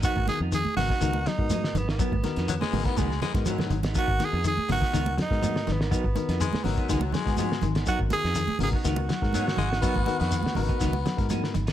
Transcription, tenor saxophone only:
\new Staff \with { instrumentName = "Tenor saxophone" } { \time 4/4 \key gis \dorian \tempo 4 = 122 fis'8 gis'8 gis'8 fis'4 dis'4 b16 b16~ | b4.~ b16 r2 r16 | fis'8 gis'8 gis'8 fis'4 dis'4 b16 b16~ | b4.~ b16 r2 r16 |
fis'8 gis'4 gis'16 fis'2~ fis'16~ | fis'2. r4 | }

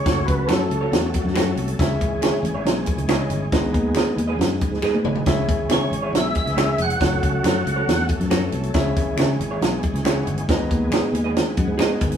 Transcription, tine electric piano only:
\new Staff \with { instrumentName = "Tine electric piano" } { \time 4/4 \key cis \minor \tempo 4 = 138 << { r1 | r1 | r2. <b' gis''>8 <dis'' b''>8~ | <dis'' b''>8 r2. r8 |
r2. <b' gis''>8 <cis'' a''>8~ | <cis'' a''>8 r2. r8 | r2 r8 fis''8 gis''4 | } \\ { <cis' fis' gis' a' cis'' fis''>4. r4. <cis' fis' gis' a' cis'' fis''>8. r16 | <cis cis' e' gis' cis'' e''>4. r4. <cis' e' gis' cis'' dis''>8. r16 | <gis, b dis' gis' b' dis''>4. r2 r8 | <cis cis' e' gis' cis'' e''>4. r4. <cis' e' gis' cis'' e''>8. r16 |
<cis' fis' a' cis'' fis''>4. r2 r8 | <cis cis' e' gis' cis'' e''>4. r4. <cis' e' gis' cis'' fis''>8. r16 | <gis, b dis' gis' b' dis''>4. r4. <b dis' gis' b' dis''>8. r16 | } >> }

